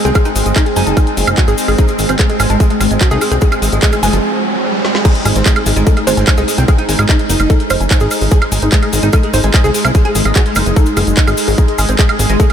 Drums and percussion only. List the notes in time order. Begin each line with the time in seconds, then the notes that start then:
0.05 closed hi-hat, cabasa
0.15 kick, closed hi-hat, cabasa, high woodblock
0.25 closed hi-hat, cabasa
0.36 open hi-hat, cabasa
0.46 closed hi-hat, cabasa
0.56 kick, clap, closed hi-hat, cabasa, high woodblock
0.66 closed hi-hat
0.76 open hi-hat, cabasa
0.87 closed hi-hat, cabasa
0.97 kick, closed hi-hat, cabasa, high woodblock
1.07 closed hi-hat
1.17 open hi-hat, cabasa
1.27 closed hi-hat, cabasa, high woodblock
1.38 kick, clap, closed hi-hat, cabasa
1.48 closed hi-hat, cabasa
1.58 open hi-hat, cabasa
1.68 open hi-hat, cabasa, high woodblock
1.78 kick, closed hi-hat, cabasa
1.88 closed hi-hat, cabasa
1.99 open hi-hat, cabasa
2.09 closed hi-hat, cabasa, high woodblock
2.19 kick, clap, closed hi-hat, cabasa
2.30 closed hi-hat
2.40 open hi-hat, cabasa, high woodblock
2.50 closed hi-hat, cabasa
2.60 kick, closed hi-hat, cabasa
2.70 closed hi-hat
2.81 open hi-hat, cabasa, high woodblock
2.91 closed hi-hat, cabasa
3.01 kick, clap, closed hi-hat, cabasa
3.11 closed hi-hat, cabasa
3.21 open hi-hat, cabasa, high woodblock
3.32 closed hi-hat, cabasa
3.41 kick, closed hi-hat, cabasa
3.52 closed hi-hat, cabasa, high woodblock
3.62 open hi-hat, cabasa
3.72 closed hi-hat, cabasa
3.82 kick, clap, closed hi-hat, cabasa
3.92 closed hi-hat, cabasa, high woodblock
4.03 open hi-hat, cabasa
4.13 closed hi-hat, cabasa
4.85 snare
4.95 snare
5.05 kick, closed hi-hat, crash, cabasa
5.15 closed hi-hat
5.25 open hi-hat, cabasa, high woodblock
5.36 closed hi-hat, cabasa
5.46 kick, clap, closed hi-hat, cabasa
5.56 closed hi-hat, high woodblock
5.66 open hi-hat, cabasa
5.76 closed hi-hat, cabasa
5.87 kick, closed hi-hat, cabasa
5.97 closed hi-hat, high woodblock
6.07 open hi-hat, cabasa
6.17 closed hi-hat, cabasa
6.27 kick, clap, closed hi-hat, cabasa, high woodblock
6.37 closed hi-hat, cabasa
6.48 open hi-hat, cabasa
6.58 closed hi-hat, cabasa
6.68 kick, closed hi-hat, cabasa, high woodblock
6.78 closed hi-hat
6.89 open hi-hat, cabasa
6.99 closed hi-hat, cabasa, high woodblock
7.09 kick, clap, closed hi-hat, cabasa
7.19 closed hi-hat
7.29 open hi-hat, cabasa
7.40 closed hi-hat, cabasa, high woodblock
7.50 kick, closed hi-hat, cabasa
7.60 closed hi-hat
7.70 open hi-hat, cabasa, high woodblock
7.80 closed hi-hat, cabasa
7.91 kick, clap, closed hi-hat, cabasa
8.00 closed hi-hat, cabasa
8.11 open hi-hat, cabasa, high woodblock
8.21 open hi-hat, cabasa
8.31 kick, closed hi-hat, cabasa
8.42 closed hi-hat, high woodblock
8.52 open hi-hat, cabasa
8.62 closed hi-hat, cabasa
8.72 kick, clap, closed hi-hat, cabasa
8.83 closed hi-hat, high woodblock
8.93 open hi-hat, cabasa
9.03 closed hi-hat, cabasa
9.13 kick, closed hi-hat, cabasa, high woodblock
9.23 closed hi-hat
9.33 open hi-hat, cabasa
9.43 closed hi-hat, cabasa
9.54 kick, clap, closed hi-hat, cabasa, high woodblock
9.64 closed hi-hat, cabasa
9.74 open hi-hat, cabasa
9.85 closed hi-hat, cabasa, high woodblock
9.95 kick, closed hi-hat, cabasa
10.05 closed hi-hat
10.15 open hi-hat, cabasa
10.25 closed hi-hat, cabasa, high woodblock
10.35 kick, clap, closed hi-hat, cabasa
10.46 closed hi-hat
10.55 open hi-hat, cabasa, high woodblock
10.66 closed hi-hat, cabasa
10.76 kick, closed hi-hat, cabasa
10.86 closed hi-hat, cabasa
10.97 open hi-hat, cabasa, high woodblock
11.07 closed hi-hat, cabasa
11.17 kick, clap, closed hi-hat, cabasa
11.27 closed hi-hat, cabasa, high woodblock
11.37 open hi-hat, cabasa
11.48 open hi-hat, cabasa
11.58 kick, cabasa
11.68 closed hi-hat
11.78 open hi-hat, cabasa, high woodblock
11.89 closed hi-hat, cabasa
11.99 kick, clap, closed hi-hat, cabasa
12.09 closed hi-hat, high woodblock
12.19 open hi-hat, cabasa
12.29 closed hi-hat, cabasa
12.40 kick, closed hi-hat, cabasa